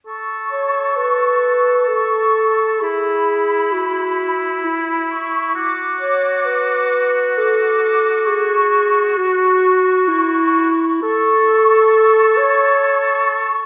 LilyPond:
<<
  \new Staff \with { instrumentName = "Flute section" } { \time 3/4 \key a \major \tempo 4 = 66 cis'''2 cis'''4 | b''2 b''8 cis'''8 | d'''2 d'''4 | cis'''4 cis'''2 |
cis'''2. | }
  \new Staff \with { instrumentName = "Clarinet" } { \time 3/4 \key a \major r8 cis''8 b'4 a'4 | gis'4 fis'4 e'4 | r8 cis''8 b'4 a'4 | gis'4 fis'4 e'4 |
a'4. cis''4 r8 | }
  \new Staff \with { instrumentName = "Oboe" } { \time 3/4 \key a \major a'2. | e'2. | fis'2.~ | fis'2~ fis'8 r8 |
a'2. | }
>>